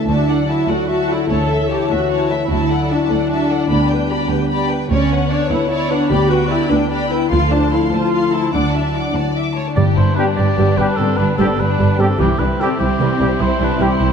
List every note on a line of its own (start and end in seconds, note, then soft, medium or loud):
0.00 0.89 A3 soft
0.00 0.49 D4 soft
0.00 0.28 E4 soft
0.07 0.46 D2 soft
0.07 0.59 D2 soft
0.07 1.29 D3 soft
0.07 1.26 F#3 soft
0.07 0.46 D4 soft
0.07 1.25 E4 soft
0.07 0.27 F#4 soft
0.07 0.27 E5 soft
0.07 0.27 A5 soft
0.29 0.69 E4 soft
0.29 0.49 A4 soft
0.29 0.49 D5 soft
0.29 0.50 F#5 soft
0.49 0.84 D4 soft
0.49 0.68 E4 soft
0.49 0.69 F#4 soft
0.49 0.69 E5 soft
0.49 0.69 A5 soft
0.69 1.20 D2 soft
0.69 1.50 E4 soft
0.69 0.89 F#4 soft
0.69 0.89 A4 soft
0.69 0.89 D5 soft
0.69 0.90 F#5 soft
0.89 2.30 A3 soft
0.89 1.08 F#4 soft
0.89 1.10 F#4 soft
0.89 1.08 E5 soft
0.89 1.08 A5 soft
1.09 1.32 D4 soft
1.09 1.30 E4 soft
1.09 1.30 A4 soft
1.09 1.30 D5 soft
1.09 1.30 F#5 soft
1.29 1.67 D2 soft
1.29 1.81 D2 soft
1.29 2.50 D3 soft
1.29 2.47 E3 soft
1.29 1.48 E4 soft
1.29 1.70 A4 soft
1.29 1.48 C#5 soft
1.29 2.46 C#5 soft
1.29 1.49 A5 soft
1.49 1.90 E4 soft
1.49 1.70 A4 soft
1.49 1.70 E5 soft
1.49 1.71 E5 soft
1.70 2.04 D4 soft
1.70 1.90 E4 soft
1.70 1.90 G4 soft
1.70 1.90 C#5 soft
1.70 1.91 A5 soft
1.89 2.41 D2 soft
1.89 2.70 E4 soft
1.89 2.30 F#4 soft
1.89 2.10 A4 soft
1.89 2.10 E5 soft
1.89 2.11 E5 soft
2.09 2.52 C#4 soft
2.09 2.28 E4 soft
2.09 2.28 C#5 soft
2.09 2.30 A5 soft
2.29 3.30 A3 soft
2.29 2.90 E4 soft
2.29 2.50 A4 soft
2.29 2.49 E5 soft
2.29 2.51 E5 soft
2.48 3.01 D2 soft
2.48 2.88 D2 soft
2.48 3.70 D3 soft
2.48 3.67 F#3 soft
2.48 3.66 E4 soft
2.48 2.69 F#4 soft
2.48 2.69 E5 soft
2.52 2.70 A5 soft
2.70 3.11 E4 soft
2.70 2.91 A4 soft
2.70 2.91 D5 soft
2.70 2.91 F#5 soft
2.90 3.25 D4 soft
2.90 3.10 D4 soft
2.90 3.10 F#4 soft
2.90 3.10 E5 soft
2.90 3.11 A5 soft
3.10 3.61 D2 soft
3.10 4.68 D4 medium
3.10 3.73 E4 soft
3.10 3.31 A4 soft
3.10 3.31 D5 soft
3.10 3.31 F#5 soft
3.30 3.73 A3 soft
3.30 3.49 F#4 soft
3.30 3.49 E5 soft
3.30 3.50 A5 soft
3.50 4.51 D4 soft
3.50 3.70 A4 soft
3.50 3.70 D5 soft
3.50 3.71 F#5 soft
3.69 4.21 D2 soft
3.69 4.09 D2 soft
3.69 4.91 D3 soft
3.69 4.86 G3 soft
3.69 4.86 B3 soft
3.69 3.90 G4 soft
3.69 3.90 D5 soft
3.69 3.89 B5 soft
3.90 4.30 G4 soft
3.90 4.11 B4 soft
3.90 4.11 G5 soft
4.09 4.45 F#4 soft
4.09 4.31 G4 soft
4.09 4.31 D5 soft
4.09 4.30 B5 soft
4.29 4.81 D2 soft
4.29 4.93 G4 soft
4.29 4.51 B4 soft
4.29 4.50 G5 soft
4.50 5.71 D4 soft
4.50 4.70 G4 soft
4.50 4.70 D5 soft
4.50 4.69 B5 soft
4.70 5.91 B3 soft
4.70 4.91 B4 soft
4.70 4.91 G5 soft
4.91 5.28 D2 medium
4.91 5.42 D2 soft
4.91 6.10 D3 soft
4.91 7.28 B3 soft
4.91 5.28 C#4 medium
4.91 5.93 C#5 soft
4.91 5.10 C#5 soft
4.91 5.10 D5 soft
5.11 5.31 B4 soft
5.11 5.50 B4 soft
5.11 5.29 C#5 soft
5.11 5.32 F#5 soft
5.31 5.51 D4 medium
5.31 5.66 A4 soft
5.31 5.48 C#5 soft
5.31 5.51 C#5 soft
5.31 5.51 D5 soft
5.49 6.02 D2 medium
5.49 5.70 E4 medium
5.49 5.70 B4 soft
5.49 6.30 B4 soft
5.49 5.70 C#5 soft
5.49 5.71 F#5 soft
5.71 6.91 D4 soft
5.71 5.91 E4 medium
5.71 5.89 C#5 soft
5.71 5.90 C#5 soft
5.71 5.89 D5 soft
5.90 7.10 B3 soft
5.90 6.11 D4 medium
5.90 6.11 B4 soft
5.90 6.11 C#5 soft
5.90 6.11 F#5 soft
6.10 6.61 D2 medium
6.10 6.48 D2 medium
6.10 7.31 D3 soft
6.10 7.27 D4 medium
6.10 6.29 G4 soft
6.10 6.31 G4 medium
6.10 6.29 D5 soft
6.10 6.29 B5 soft
6.29 6.51 F#4 medium
6.29 6.50 B4 soft
6.29 6.71 B4 soft
6.29 6.52 G5 soft
6.49 6.70 E4 medium
6.49 6.70 G4 soft
6.49 6.86 A4 soft
6.49 6.70 D5 soft
6.49 6.72 B5 soft
6.70 7.22 D2 soft
6.70 6.89 D4 medium
6.70 6.91 B4 soft
6.70 7.33 B4 soft
6.70 6.92 G5 soft
6.91 7.11 D4 medium
6.91 7.33 D4 soft
6.91 7.10 G4 soft
6.91 7.09 D5 soft
6.91 7.10 B5 soft
7.10 7.33 B3 soft
7.10 7.31 E4 medium
7.10 7.31 B4 soft
7.10 7.32 G5 soft
7.30 7.69 D2 medium
7.30 7.83 D2 medium
7.30 8.53 D3 soft
7.30 8.49 F3 soft
7.30 8.49 A3 soft
7.30 7.51 F4 medium
7.30 7.49 A4 soft
7.30 7.49 F5 soft
7.30 7.50 C6 soft
7.51 7.72 D4 medium
7.51 7.91 F4 soft
7.51 7.72 C5 soft
7.51 7.72 A5 soft
7.72 7.93 E4 soft
7.72 8.07 E4 soft
7.72 7.92 A4 soft
7.72 7.92 F5 soft
7.72 7.92 C6 soft
7.92 8.44 D2 soft
7.92 8.32 F4 medium
7.92 8.55 F4 soft
7.92 8.13 C5 soft
7.92 8.12 A5 soft
8.12 8.55 C4 soft
8.12 8.32 A4 soft
8.12 8.32 F5 soft
8.12 8.31 C6 soft
8.32 9.56 A3 soft
8.32 8.53 E4 medium
8.32 8.54 C5 soft
8.32 8.54 A5 soft
8.53 8.92 D2 soft
8.53 9.06 D2 soft
8.53 9.79 D3 soft
8.53 9.54 F#3 soft
8.53 9.15 D4 soft
8.53 9.54 E4 soft
8.53 8.73 D5 soft
8.53 8.73 F#5 soft
8.53 8.72 D6 soft
8.73 9.14 F#4 soft
8.73 8.94 D5 soft
8.73 8.95 E5 soft
8.73 8.94 A5 soft
8.94 9.30 E4 soft
8.94 9.13 D5 soft
8.94 9.15 F#5 soft
8.94 9.15 D6 soft
9.14 9.67 D2 soft
9.14 9.78 F#4 soft
9.14 9.34 D5 soft
9.14 9.36 A5 soft
9.35 9.79 E4 soft
9.35 9.56 E5 soft
9.35 9.55 D6 soft
9.55 9.79 A3 soft
9.55 9.76 C#5 soft
9.55 9.76 A5 soft
9.76 9.85 G1 soft
9.76 12.21 G2 soft
9.76 10.34 G2 medium
9.76 9.86 G2 soft
9.76 9.96 G3 soft
9.76 12.16 B3 soft
9.76 12.16 D4 soft
9.76 9.95 G4 medium
9.76 9.86 D5 medium
9.97 10.05 G1 soft
9.97 10.06 G2 soft
9.97 10.06 G3 soft
9.97 10.77 D4 soft
9.97 10.17 E4 soft
9.97 10.15 C5 medium
10.15 10.24 G2 soft
10.15 10.24 G3 soft
10.15 10.23 B3 soft
10.15 10.24 D4 soft
10.15 10.37 D4 soft
10.15 10.25 G4 soft
10.15 10.57 G4 soft
10.15 10.25 B4 soft
10.36 10.46 G1 soft
10.36 10.47 G2 soft
10.36 10.46 G3 soft
10.36 10.78 G4 soft
10.36 11.58 B4 soft
10.36 10.79 D5 medium
10.58 10.66 G1 soft
10.58 10.66 G2 soft
10.58 10.76 G3 soft
10.58 11.38 G4 soft
10.76 10.85 G1 soft
10.76 10.86 G2 soft
10.76 10.88 G2 soft
10.76 10.86 G3 soft
10.76 10.84 B3 soft
10.76 10.84 D4 soft
10.76 11.17 D4 soft
10.76 10.98 D4 soft
10.76 10.86 G4 soft
10.76 10.98 B4 medium
10.97 11.06 G1 soft
10.97 11.08 G2 soft
10.97 12.21 D3 soft
10.97 11.07 D3 soft
10.97 11.07 G3 soft
10.97 11.19 C4 soft
10.97 11.19 A4 medium
11.17 11.27 G1 soft
11.17 11.27 G2 soft
11.17 11.26 G3 soft
11.17 11.98 D4 soft
11.17 11.27 D4 medium
11.17 11.37 B4 medium
11.38 11.46 G1 soft
11.38 11.46 G2 soft
11.38 11.48 G2 soft
11.38 11.57 G3 medium
11.38 11.46 G3 soft
11.38 11.46 B3 soft
11.38 11.47 C4 soft
11.38 11.46 D4 soft
11.38 11.78 G4 soft
11.38 11.46 G4 soft
11.38 11.62 A4 medium
11.58 11.66 G1 soft
11.58 11.69 G2 soft
11.58 11.67 G3 soft
11.58 11.99 D4 soft
11.58 12.21 B4 soft
11.58 12.02 B4 soft
11.78 11.87 G1 soft
11.78 11.89 G2 soft
11.78 11.86 D3 soft
11.78 11.86 G3 soft
11.78 12.58 G4 soft
11.97 12.07 G1 soft
11.97 12.06 G2 soft
11.97 12.09 G2 soft
11.97 12.05 G3 soft
11.97 12.07 G3 soft
11.97 12.05 B3 soft
11.97 12.17 C4 soft
11.97 12.06 D4 soft
11.97 12.21 D4 soft
11.97 12.07 G4 soft
11.97 12.19 A4 medium
12.18 12.27 C2 soft
12.18 14.13 C3 soft
12.18 12.38 E3 medium
12.18 12.38 G3 soft
12.18 12.26 C4 medium
12.18 14.13 C4 soft
12.18 14.13 E4 soft
12.18 12.41 G4 medium
12.39 12.47 C2 soft
12.39 12.48 C2 soft
12.39 12.47 E3 soft
12.39 12.47 G3 soft
12.39 13.19 C4 soft
12.39 12.47 D4 soft
12.39 12.62 B4 medium
12.58 12.66 G2 soft
12.58 12.66 G3 soft
12.58 12.79 C4 soft
12.58 12.67 C4 soft
12.58 12.67 E4 soft
12.58 13.00 G4 soft
12.58 12.68 G4 soft
12.58 12.80 A4 soft
12.79 12.88 C2 soft
12.79 12.87 E3 soft
12.79 12.87 G3 soft
12.79 13.39 C4 soft
12.79 13.43 G4 medium
12.79 14.00 E5 soft
12.99 13.08 C2 soft
12.99 13.09 C2 soft
12.99 13.19 E3 soft
12.99 13.19 G3 soft
12.99 13.80 G4 soft
13.17 13.29 C2 soft
13.17 13.26 G2 soft
13.17 13.29 E3 soft
13.17 13.26 G3 soft
13.17 13.28 G3 soft
13.17 13.26 C4 soft
13.17 13.60 C4 soft
13.17 13.26 E4 soft
13.17 13.28 G4 soft
13.39 13.48 C2 soft
13.39 13.49 C2 soft
13.39 13.47 E3 soft
13.39 14.13 G3 soft
13.39 13.60 E4 soft
13.39 13.65 C5 medium
13.60 13.69 C2 soft
13.60 13.68 E3 soft
13.60 13.68 G3 soft
13.60 14.13 C4 soft
13.60 13.81 D4 medium
13.64 13.84 B4 medium
13.78 13.89 C2 soft
13.78 13.87 G2 soft
13.78 13.99 E3 soft
13.78 13.86 G3 soft
13.78 13.99 G3 soft
13.78 13.86 C4 soft
13.78 13.86 E4 soft
13.78 14.13 E4 medium
13.78 14.13 G4 soft
13.78 13.89 G4 soft
13.83 14.13 C5 medium
14.00 14.09 C2 soft
14.00 14.08 E3 soft
14.00 14.08 G3 soft
14.00 14.13 E5 soft